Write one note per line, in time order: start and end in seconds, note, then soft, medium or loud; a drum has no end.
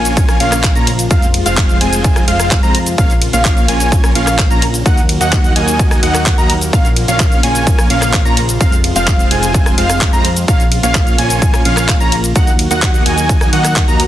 0.00 0.38 A#1 medium
0.00 1.09 C#3 medium
0.00 2.94 F3 medium
0.00 0.38 A#3 medium
0.00 1.07 A#3 medium
0.00 0.37 C#4 medium
0.00 0.38 F4 medium
0.00 4.82 F4 loud
0.00 0.37 C#5 medium
0.00 0.37 G#5 medium
0.00 0.38 G#5 medium
0.05 closed hi-hat medium
0.05 cabasa medium
0.17 kick loud
0.17 closed hi-hat medium
0.17 cabasa medium
0.29 cross-stick medium
0.29 closed hi-hat soft
0.29 cabasa soft
0.40 0.73 A#1 loud
0.40 0.73 A#3 medium
0.40 0.73 C#4 medium
0.40 0.73 F4 medium
0.40 0.73 C#5 medium
0.40 0.73 F5 medium
0.40 0.73 F5 loud
0.40 open hi-hat loud
0.40 ride medium
0.52 cross-stick medium
0.52 clap soft
0.52 closed hi-hat medium
0.52 cabasa medium
0.64 kick loud
0.64 clap loud
0.64 closed hi-hat medium
0.64 cabasa medium
0.75 1.08 A#1 loud
0.75 0.90 A#3 medium
0.75 0.90 C#4 medium
0.75 0.90 F4 medium
0.75 0.90 C#5 medium
0.75 0.90 A#5 loud
0.75 closed hi-hat soft
0.75 cabasa soft
0.87 open hi-hat loud
0.87 ride medium
0.99 closed hi-hat medium
0.99 cabasa medium
1.10 2.96 C3 medium
1.10 2.96 G#3 medium
1.10 1.26 G#3 medium
1.10 1.26 C4 medium
1.10 1.26 F4 medium
1.10 1.26 C5 medium
1.10 1.26 F5 loud
1.10 kick loud
1.10 closed hi-hat medium
1.10 cabasa medium
1.22 closed hi-hat soft
1.22 cabasa soft
1.34 open hi-hat loud
1.34 ride medium
1.46 1.79 F1 loud
1.46 1.78 G#3 medium
1.46 1.78 C4 medium
1.46 1.78 F4 medium
1.46 1.78 C5 medium
1.46 1.78 F5 loud
1.46 closed hi-hat medium
1.46 cabasa medium
1.57 kick loud
1.57 clap loud
1.57 closed hi-hat medium
1.57 cabasa medium
1.69 closed hi-hat soft
1.69 cabasa soft
1.81 2.25 F1 loud
1.81 2.25 G#3 medium
1.81 2.25 C4 medium
1.81 2.25 F4 medium
1.81 2.25 C5 medium
1.81 2.25 G#5 medium
1.81 open hi-hat loud
1.81 ride medium
1.93 closed hi-hat medium
1.93 cabasa medium
2.04 kick loud
2.04 closed hi-hat medium
2.04 cabasa medium
2.16 cross-stick medium
2.16 closed hi-hat soft
2.16 cabasa soft
2.28 2.61 F1 loud
2.28 2.60 G#3 medium
2.28 2.60 C4 medium
2.28 2.60 F4 medium
2.28 2.60 C5 medium
2.28 2.60 F5 medium
2.28 2.60 F5 loud
2.28 open hi-hat loud
2.28 ride medium
2.40 cross-stick medium
2.40 closed hi-hat medium
2.40 cabasa medium
2.51 kick loud
2.51 clap loud
2.51 closed hi-hat medium
2.51 cabasa medium
2.63 2.96 F2 loud
2.63 2.78 G#3 medium
2.63 2.78 C4 medium
2.63 2.78 F4 medium
2.63 2.78 C5 medium
2.63 2.78 A#5 loud
2.63 closed hi-hat soft
2.63 cabasa soft
2.75 open hi-hat loud
2.75 ride medium
2.86 closed hi-hat medium
2.86 cabasa medium
2.98 3.31 A#1 loud
2.98 4.84 C#3 medium
2.98 4.84 F3 medium
2.98 8.57 A#3 medium
2.98 3.13 A#3 medium
2.98 3.13 C#4 medium
2.98 3.13 F4 medium
2.98 3.13 C#5 medium
2.98 3.13 F5 loud
2.98 kick loud
2.98 closed hi-hat medium
2.98 cabasa medium
3.10 closed hi-hat soft
3.10 cabasa soft
3.22 open hi-hat loud
3.22 ride medium
3.33 3.66 A#1 loud
3.33 3.66 A#3 loud
3.33 3.66 C#4 medium
3.33 3.66 F4 medium
3.33 3.66 C#5 medium
3.33 3.66 F5 loud
3.33 closed hi-hat medium
3.33 cabasa medium
3.45 kick loud
3.45 clap loud
3.45 closed hi-hat medium
3.45 cabasa medium
3.57 closed hi-hat soft
3.57 cabasa soft
3.68 4.13 A#1 loud
3.68 4.13 A#3 medium
3.68 4.13 C#4 medium
3.68 4.13 F4 medium
3.68 4.13 C#5 medium
3.68 4.13 G#5 medium
3.68 open hi-hat loud
3.68 ride medium
3.80 closed hi-hat medium
3.80 cabasa medium
3.92 kick loud
3.92 closed hi-hat medium
3.92 cabasa medium
4.04 cross-stick medium
4.04 closed hi-hat soft
4.04 cabasa soft
4.15 4.48 A#1 loud
4.15 4.48 A#3 medium
4.15 4.48 C#4 medium
4.15 4.48 F4 medium
4.15 4.48 C#5 medium
4.15 4.48 F5 loud
4.15 open hi-hat loud
4.15 ride medium
4.27 cross-stick medium
4.27 clap soft
4.27 closed hi-hat medium
4.27 cabasa medium
4.39 kick loud
4.39 clap loud
4.39 closed hi-hat medium
4.39 cabasa medium
4.50 4.83 A#1 loud
4.50 4.65 A#3 loud
4.50 4.65 C#4 medium
4.50 4.65 F4 medium
4.50 4.65 C#5 medium
4.50 4.65 A#5 loud
4.50 closed hi-hat soft
4.50 cabasa soft
4.62 open hi-hat loud
4.62 ride medium
4.74 closed hi-hat soft
4.74 cabasa medium
4.86 5.18 D#2 loud
4.86 6.71 D#3 medium
4.86 6.71 F#3 medium
4.86 5.01 A#3 medium
4.86 5.01 D#4 medium
4.86 6.71 F#4 loud
4.86 5.01 F#4 medium
4.86 5.01 D#5 medium
4.86 5.01 F#5 loud
4.86 kick loud
4.86 closed hi-hat medium
4.86 cabasa medium
4.97 closed hi-hat soft
4.97 cabasa soft
5.09 open hi-hat loud
5.09 ride medium
5.21 5.54 D#2 loud
5.21 5.53 A#3 loud
5.21 5.53 D#4 medium
5.21 5.53 F#4 medium
5.21 5.53 D#5 medium
5.21 5.53 F#5 loud
5.21 closed hi-hat soft
5.21 cabasa medium
5.32 kick loud
5.32 clap loud
5.32 closed hi-hat medium
5.32 cabasa medium
5.44 closed hi-hat soft
5.44 cabasa soft
5.56 6.00 D#2 medium
5.56 6.00 A#3 medium
5.56 6.00 D#4 medium
5.56 6.00 F#4 medium
5.56 6.00 D#5 medium
5.56 6.00 G#5 medium
5.56 open hi-hat loud
5.56 ride medium
5.68 closed hi-hat soft
5.68 cabasa medium
5.79 kick loud
5.79 closed hi-hat medium
5.79 cabasa medium
5.91 cross-stick medium
5.91 closed hi-hat soft
5.91 cabasa soft
6.03 6.36 D#2 medium
6.03 6.35 A#3 medium
6.03 6.35 D#4 medium
6.03 6.35 F#4 medium
6.03 6.35 D#5 medium
6.03 6.35 F#5 loud
6.03 6.35 F#5 medium
6.03 open hi-hat loud
6.03 ride medium
6.14 cross-stick medium
6.14 clap soft
6.14 closed hi-hat medium
6.14 cabasa medium
6.26 kick loud
6.26 clap loud
6.26 closed hi-hat medium
6.26 cabasa medium
6.38 6.71 D#2 medium
6.38 6.53 A#3 medium
6.38 6.53 D#4 medium
6.38 6.53 F#4 medium
6.38 6.53 D#5 medium
6.38 6.53 A#5 loud
6.38 closed hi-hat soft
6.38 cabasa soft
6.50 open hi-hat loud
6.50 ride medium
6.61 closed hi-hat medium
6.61 cabasa medium
6.73 8.59 C#3 medium
6.73 10.44 F3 medium
6.73 6.88 A#3 medium
6.73 6.88 C#4 medium
6.73 12.32 F4 loud
6.73 6.88 F4 medium
6.73 6.88 C#5 medium
6.73 6.88 F5 loud
6.73 kick loud
6.73 closed hi-hat medium
6.73 cabasa medium
6.85 closed hi-hat soft
6.85 cabasa soft
6.96 open hi-hat loud
6.96 ride medium
7.08 7.41 A#1 loud
7.08 7.41 A#3 medium
7.08 7.41 C#4 medium
7.08 7.41 F4 medium
7.08 7.41 C#5 medium
7.08 7.41 F5 loud
7.08 closed hi-hat soft
7.08 cabasa medium
7.20 kick loud
7.20 clap loud
7.20 closed hi-hat medium
7.20 cabasa medium
7.32 closed hi-hat soft
7.32 cabasa soft
7.43 7.88 A#1 loud
7.43 7.88 A#3 medium
7.43 7.88 C#4 medium
7.43 7.88 F4 medium
7.43 7.88 C#5 medium
7.43 7.88 G#5 medium
7.43 open hi-hat loud
7.43 ride medium
7.55 closed hi-hat medium
7.55 cabasa medium
7.67 kick loud
7.67 closed hi-hat medium
7.67 cabasa medium
7.79 cross-stick medium
7.79 closed hi-hat soft
7.79 cabasa soft
7.90 8.23 A#1 medium
7.90 8.23 A#3 medium
7.90 8.23 C#4 medium
7.90 8.23 F4 medium
7.90 8.23 C#5 medium
7.90 8.23 F5 medium
7.90 8.23 F5 loud
7.90 open hi-hat loud
7.90 ride medium
8.02 cross-stick medium
8.02 clap soft
8.02 closed hi-hat medium
8.02 cabasa medium
8.13 kick loud
8.13 clap loud
8.13 closed hi-hat medium
8.13 cabasa medium
8.25 8.58 A#1 loud
8.25 8.40 A#3 loud
8.25 8.40 C#4 medium
8.25 8.40 F4 medium
8.25 8.40 C#5 medium
8.25 8.40 A#5 loud
8.25 closed hi-hat soft
8.25 cabasa soft
8.37 open hi-hat loud
8.37 ride medium
8.49 closed hi-hat soft
8.49 cabasa medium
8.61 8.93 F1 medium
8.61 10.46 C3 medium
8.61 10.46 G#3 medium
8.61 8.76 G#3 medium
8.61 8.76 C4 medium
8.61 8.76 F4 medium
8.61 8.76 C5 medium
8.61 8.76 F5 loud
8.61 kick loud
8.61 closed hi-hat medium
8.61 cabasa medium
8.72 closed hi-hat soft
8.72 cabasa soft
8.84 open hi-hat loud
8.84 ride medium
8.96 9.29 F1 loud
8.96 9.28 G#3 medium
8.96 9.28 C4 medium
8.96 9.28 F4 medium
8.96 9.28 C5 medium
8.96 9.28 F5 loud
8.96 closed hi-hat medium
8.96 cabasa medium
9.07 kick loud
9.07 clap loud
9.07 closed hi-hat medium
9.07 cabasa medium
9.19 closed hi-hat soft
9.19 cabasa soft
9.31 9.75 F1 loud
9.31 9.75 G#3 medium
9.31 9.75 C4 medium
9.31 9.75 F4 medium
9.31 9.75 C5 medium
9.31 9.75 G#5 medium
9.31 open hi-hat loud
9.31 ride medium
9.43 closed hi-hat medium
9.43 cabasa medium
9.54 kick loud
9.54 closed hi-hat medium
9.54 cabasa medium
9.66 cross-stick medium
9.66 closed hi-hat soft
9.66 cabasa soft
9.78 10.11 F1 loud
9.78 10.10 G#3 medium
9.78 10.10 C4 medium
9.78 10.10 F4 medium
9.78 10.10 C5 medium
9.78 10.10 F5 loud
9.78 open hi-hat loud
9.78 ride medium
9.90 cross-stick medium
9.90 closed hi-hat medium
9.90 cabasa medium
10.01 kick loud
10.01 clap loud
10.01 closed hi-hat medium
10.01 cabasa medium
10.13 10.46 F2 loud
10.13 10.28 G#3 loud
10.13 10.28 C4 medium
10.13 10.28 F4 medium
10.13 10.28 C5 medium
10.13 10.28 A#5 loud
10.13 closed hi-hat soft
10.13 cabasa soft
10.25 open hi-hat loud
10.25 ride medium
10.36 closed hi-hat medium
10.36 cabasa medium
10.48 10.81 A#1 loud
10.48 12.34 C#3 medium
10.48 12.34 F3 medium
10.48 10.63 A#3 medium
10.48 14.07 A#3 medium
10.48 10.63 C#4 medium
10.48 10.63 F4 medium
10.48 10.63 C#5 medium
10.48 10.63 F5 loud
10.48 kick loud
10.48 closed hi-hat medium
10.48 cabasa medium
10.60 closed hi-hat soft
10.60 cabasa soft
10.72 open hi-hat loud
10.72 ride medium
10.83 11.16 A#1 loud
10.83 11.16 A#3 loud
10.83 11.16 C#4 medium
10.83 11.16 F4 medium
10.83 11.16 C#5 medium
10.83 11.16 F5 loud
10.83 closed hi-hat medium
10.83 cabasa medium
10.95 kick loud
10.95 clap loud
10.95 closed hi-hat medium
10.95 cabasa medium
11.07 closed hi-hat soft
11.07 cabasa soft
11.18 11.63 A#1 loud
11.18 11.63 A#3 medium
11.18 11.63 C#4 medium
11.18 11.63 F4 medium
11.18 11.63 C#5 medium
11.18 11.63 G#5 medium
11.18 open hi-hat loud
11.18 ride medium
11.30 closed hi-hat medium
11.30 cabasa medium
11.42 kick loud
11.42 closed hi-hat medium
11.42 cabasa medium
11.54 cross-stick medium
11.54 closed hi-hat soft
11.54 cabasa soft
11.65 11.98 A#1 loud
11.65 11.98 A#3 medium
11.65 11.98 C#4 medium
11.65 11.98 F4 medium
11.65 11.98 C#5 medium
11.65 11.98 F5 medium
11.65 11.98 F5 loud
11.65 open hi-hat loud
11.65 ride medium
11.77 cross-stick medium
11.77 clap soft
11.77 closed hi-hat medium
11.77 cabasa medium
11.89 kick loud
11.89 clap loud
11.89 closed hi-hat medium
11.89 cabasa medium
12.00 12.33 A#1 loud
12.00 12.15 A#3 medium
12.00 12.15 C#4 medium
12.00 12.15 F4 medium
12.00 12.15 C#5 medium
12.00 12.15 A#5 loud
12.00 closed hi-hat soft
12.00 cabasa soft
12.12 open hi-hat loud
12.12 ride medium
12.24 closed hi-hat medium
12.24 cabasa medium
12.36 14.07 D#3 medium
12.36 14.07 F#3 medium
12.36 12.51 A#3 medium
12.36 12.51 D#4 medium
12.36 14.07 F#4 loud
12.36 12.51 F#4 medium
12.36 12.51 D#5 medium
12.36 12.51 F#5 loud
12.36 kick loud
12.36 closed hi-hat medium
12.36 cabasa medium
12.47 closed hi-hat soft
12.47 cabasa soft
12.59 open hi-hat loud
12.59 ride medium
12.71 13.04 D#2 loud
12.71 13.03 A#3 medium
12.71 13.03 D#4 medium
12.71 13.03 F#4 medium
12.71 13.03 D#5 medium
12.71 13.03 F#5 loud
12.71 closed hi-hat medium
12.71 cabasa medium
12.82 kick loud
12.82 clap loud
12.82 closed hi-hat medium
12.82 cabasa medium
12.94 closed hi-hat soft
12.94 cabasa soft
13.06 13.50 D#2 loud
13.06 13.50 A#3 medium
13.06 13.50 D#4 medium
13.06 13.50 F#4 medium
13.06 13.50 D#5 medium
13.06 13.50 G#5 medium
13.06 open hi-hat loud
13.06 ride medium
13.18 closed hi-hat medium
13.18 cabasa medium
13.29 kick loud
13.29 closed hi-hat medium
13.29 cabasa medium
13.41 cross-stick medium
13.41 closed hi-hat soft
13.41 cabasa soft
13.53 13.86 D#2 loud
13.53 13.85 A#3 medium
13.53 13.85 D#4 medium
13.53 13.85 F#4 medium
13.53 13.85 D#5 medium
13.53 13.85 F#5 medium
13.53 13.85 F#5 loud
13.53 open hi-hat loud
13.53 ride medium
13.64 cross-stick medium
13.64 clap soft
13.64 closed hi-hat medium
13.64 cabasa medium
13.76 kick loud
13.76 clap loud
13.76 closed hi-hat medium
13.76 cabasa medium
13.88 14.07 D#2 loud
13.88 14.03 A#3 loud
13.88 14.03 D#4 medium
13.88 14.03 F#4 medium
13.88 14.03 D#5 medium
13.88 14.03 A#5 loud
13.88 closed hi-hat soft
13.88 cabasa soft
14.00 open hi-hat loud
14.00 ride medium